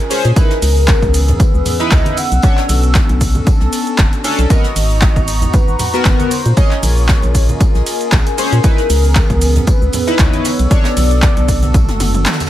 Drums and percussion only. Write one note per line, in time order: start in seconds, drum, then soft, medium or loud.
0.10 snare soft
0.10 open hi-hat loud
0.10 ride medium
0.10 tambourine medium
0.10 cabasa medium
0.25 closed hi-hat medium
0.25 cabasa soft
0.36 kick loud
0.36 closed hi-hat medium
0.36 tambourine medium
0.36 cabasa soft
0.50 snare soft
0.50 closed hi-hat soft
0.50 cabasa soft
0.62 open hi-hat medium
0.62 open hi-hat loud
0.62 ride medium
0.62 cabasa medium
0.77 cabasa soft
0.88 kick loud
0.88 snare loud
0.88 clap loud
0.88 closed hi-hat medium
0.88 tambourine medium
0.88 cabasa soft
1.02 kick medium
1.02 closed hi-hat soft
1.02 cabasa soft
1.14 open hi-hat loud
1.14 ride medium
1.14 tambourine medium
1.14 cabasa medium
1.28 closed hi-hat soft
1.28 low conga medium
1.28 cabasa soft
1.40 kick loud
1.40 closed hi-hat medium
1.40 tambourine medium
1.40 muted conga medium
1.40 cabasa soft
1.54 cabasa soft
1.65 open hi-hat loud
1.65 ride medium
1.65 tambourine medium
1.65 muted conga medium
1.65 low conga medium
1.65 cabasa medium
1.80 snare medium
1.80 closed hi-hat soft
1.80 cabasa soft
1.91 kick loud
1.91 snare loud
1.91 clap loud
1.91 closed hi-hat medium
1.91 tambourine medium
1.91 cabasa soft
2.05 closed hi-hat medium
2.05 closed hi-hat soft
2.05 high conga medium
2.05 cabasa soft
2.17 open hi-hat loud
2.17 ride medium
2.17 tambourine medium
2.17 cabasa medium
2.32 closed hi-hat medium
2.32 cabasa soft
2.42 kick loud
2.42 closed hi-hat medium
2.42 tambourine medium
2.42 cabasa soft
2.57 snare medium
2.57 clap soft
2.57 closed hi-hat soft
2.57 cabasa soft
2.69 open hi-hat loud
2.69 ride medium
2.69 tambourine medium
2.69 muted conga medium
2.69 cabasa medium
2.83 closed hi-hat soft
2.83 cabasa soft
2.95 kick loud
2.95 snare loud
2.95 clap loud
2.95 closed hi-hat medium
2.95 tambourine loud
2.95 cabasa soft
3.09 closed hi-hat soft
3.09 muted conga medium
3.09 cabasa soft
3.21 kick medium
3.21 open hi-hat loud
3.21 ride medium
3.21 tambourine medium
3.21 cabasa medium
3.35 closed hi-hat soft
3.35 high conga medium
3.35 low conga medium
3.35 cabasa soft
3.47 kick loud
3.47 closed hi-hat medium
3.47 tambourine medium
3.47 cabasa soft
3.60 snare soft
3.60 cabasa soft
3.72 snare medium
3.72 open hi-hat loud
3.72 ride medium
3.72 tambourine medium
3.72 cabasa medium
3.87 closed hi-hat soft
3.87 cabasa soft
3.98 kick loud
3.98 snare loud
3.98 clap loud
3.98 closed hi-hat medium
3.98 tambourine medium
3.98 cabasa soft
4.13 closed hi-hat soft
4.13 cabasa soft
4.24 snare medium
4.24 open hi-hat loud
4.24 ride medium
4.24 tambourine medium
4.24 cabasa medium
4.39 closed hi-hat medium
4.39 cabasa soft
4.50 kick loud
4.50 closed hi-hat medium
4.50 tambourine loud
4.50 cabasa soft
4.64 snare medium
4.64 closed hi-hat soft
4.64 cabasa soft
4.76 open hi-hat loud
4.76 open hi-hat medium
4.76 ride medium
4.76 cabasa medium
4.90 cabasa soft
5.02 kick loud
5.02 snare loud
5.02 clap loud
5.02 closed hi-hat medium
5.02 tambourine medium
5.02 cabasa soft
5.16 kick medium
5.16 closed hi-hat soft
5.16 cabasa soft
5.28 open hi-hat medium
5.28 ride medium
5.28 tambourine medium
5.28 cabasa medium
5.42 closed hi-hat soft
5.42 low conga medium
5.42 cabasa soft
5.53 kick loud
5.53 closed hi-hat medium
5.53 tambourine medium
5.53 muted conga medium
5.53 cabasa soft
5.68 cabasa soft
5.79 open hi-hat loud
5.79 ride medium
5.79 tambourine medium
5.79 muted conga medium
5.79 low conga medium
5.79 cabasa medium
5.94 snare soft
5.94 closed hi-hat soft
5.94 cabasa soft
6.05 kick loud
6.05 snare loud
6.05 clap loud
6.05 closed hi-hat medium
6.05 tambourine medium
6.05 cabasa soft
6.20 closed hi-hat medium
6.20 closed hi-hat soft
6.20 high conga medium
6.20 cabasa soft
6.31 open hi-hat medium
6.31 ride medium
6.31 tambourine medium
6.31 cabasa medium
6.46 closed hi-hat medium
6.46 cabasa soft
6.57 kick loud
6.57 closed hi-hat medium
6.57 tambourine medium
6.57 cabasa soft
6.71 snare soft
6.71 clap soft
6.71 closed hi-hat soft
6.71 cabasa soft
6.83 open hi-hat loud
6.83 ride medium
6.83 tambourine medium
6.83 muted conga medium
6.83 cabasa medium
6.97 cabasa soft
7.09 kick loud
7.09 snare loud
7.09 clap loud
7.09 closed hi-hat medium
7.09 tambourine medium
7.09 cabasa soft
7.22 closed hi-hat soft
7.22 muted conga medium
7.22 cabasa soft
7.35 kick medium
7.35 open hi-hat medium
7.35 ride medium
7.35 tambourine medium
7.35 cabasa medium
7.49 closed hi-hat soft
7.49 high conga medium
7.49 low conga medium
7.49 cabasa soft
7.61 kick loud
7.61 closed hi-hat medium
7.61 tambourine medium
7.61 cabasa soft
7.75 snare soft
7.75 cabasa soft
7.86 snare medium
7.86 open hi-hat loud
7.86 ride medium
7.86 tambourine medium
7.86 cabasa medium
8.01 closed hi-hat soft
8.01 cabasa soft
8.12 kick loud
8.12 snare loud
8.12 clap loud
8.12 closed hi-hat medium
8.12 tambourine medium
8.12 cabasa soft
8.27 closed hi-hat medium
8.27 cabasa soft
8.38 snare medium
8.38 open hi-hat medium
8.38 ride medium
8.38 tambourine medium
8.38 cabasa medium
8.52 closed hi-hat medium
8.52 cabasa soft
8.63 kick loud
8.63 closed hi-hat medium
8.63 tambourine medium
8.63 cabasa soft
8.78 snare soft
8.78 closed hi-hat soft
8.78 cabasa soft
8.90 open hi-hat medium
8.90 open hi-hat loud
8.90 ride medium
8.90 cabasa medium
9.04 cabasa soft
9.15 kick loud
9.15 snare loud
9.15 clap loud
9.15 closed hi-hat medium
9.15 tambourine medium
9.15 cabasa soft
9.30 kick medium
9.30 closed hi-hat soft
9.30 cabasa soft
9.41 open hi-hat medium
9.41 ride medium
9.41 tambourine medium
9.41 cabasa medium
9.56 closed hi-hat soft
9.56 low conga medium
9.56 cabasa soft
9.67 kick loud
9.67 closed hi-hat medium
9.67 tambourine medium
9.67 muted conga medium
9.67 cabasa soft
9.82 cabasa soft
9.92 open hi-hat loud
9.92 ride medium
9.92 tambourine medium
9.92 muted conga medium
9.92 low conga medium
9.92 cabasa medium
10.07 snare soft
10.07 closed hi-hat soft
10.07 cabasa soft
10.19 kick loud
10.19 snare loud
10.19 clap loud
10.19 closed hi-hat medium
10.19 tambourine medium
10.19 cabasa soft
10.33 closed hi-hat soft
10.33 closed hi-hat medium
10.33 high conga medium
10.33 cabasa soft
10.45 snare loud
10.45 open hi-hat medium
10.45 ride medium
10.45 tambourine medium
10.45 cabasa medium
10.59 closed hi-hat medium
10.59 cabasa soft
10.71 kick loud
10.71 closed hi-hat medium
10.71 tambourine medium
10.71 cabasa soft
10.85 snare loud
10.85 clap soft
10.85 closed hi-hat soft
10.85 tambourine medium
10.85 cabasa soft
10.96 open hi-hat medium
10.96 open hi-hat loud
10.96 ride medium
10.96 muted conga medium
10.96 cabasa medium
11.11 closed hi-hat soft
11.11 cabasa soft
11.22 kick loud
11.22 snare loud
11.22 clap loud
11.22 closed hi-hat medium
11.22 tambourine medium
11.22 cabasa soft
11.37 closed hi-hat soft
11.37 muted conga medium
11.37 cabasa soft
11.48 kick medium
11.48 open hi-hat medium
11.48 ride medium
11.48 tambourine medium
11.48 cabasa medium
11.63 closed hi-hat soft
11.63 high conga medium
11.63 low conga medium
11.63 cabasa soft
11.74 kick loud
11.74 closed hi-hat medium
11.74 high tom medium
11.74 tambourine medium
11.74 cabasa soft
11.89 snare soft
11.89 closed hi-hat soft
11.89 high tom medium
11.89 cabasa soft
12.00 snare medium
12.00 open hi-hat loud
12.00 high tom medium
12.00 ride medium
12.00 tambourine medium
12.00 high conga medium
12.00 cabasa medium
12.15 closed hi-hat soft
12.15 mid tom medium
12.15 cabasa soft
12.26 snare medium
12.26 clap loud
12.26 closed hi-hat medium
12.26 mid tom medium
12.26 tambourine medium
12.26 cabasa soft
12.33 snare loud
12.33 tambourine medium
12.40 snare medium
12.40 closed hi-hat medium
12.40 tambourine medium
12.40 high conga medium
12.40 cabasa soft
12.46 snare medium
12.46 tambourine medium